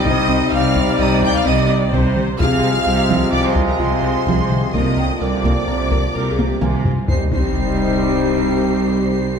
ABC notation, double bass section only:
X:1
M:5/4
L:1/8
Q:1/4=128
K:Cm
V:1 name="Double bass section" clef=bass
C,,2 C,,2 C,,2 C,,2 C,,2 | C,,2 C,,2 C,,2 C,,2 C,,2 | C,,2 C,,2 C,,2 C,,2 C,,2 | C,, C,,8- C,, |]